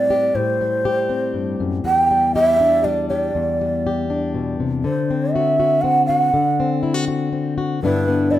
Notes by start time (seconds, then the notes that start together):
Already playing: A2 G3 C4 G4 D5
0.10 G4
0.35 A2 C5
0.61 G3
0.85 G4
1.09 C4
1.34 G2
1.60 F#2
1.84 E2 G5
2.11 G3
2.35 G4 E5
2.60 D4
2.84 G3 D5
3.09 G4 D5
3.35 E2
3.61 G3
3.87 G4
4.10 D4
4.34 B2
4.60 C3
4.84 D3 C5
5.11 C4
5.32 F#4 E5
5.60 F#4
5.82 C4 F#5
6.06 F#4 F#5
6.34 D3
6.60 C4
6.83 E4
6.94 F#4
7.08 F#4
7.33 C4
7.58 F#4
7.82 G2 D3 B3 D4 E4 B4
8.08 B3
8.31 E4 D5 D#5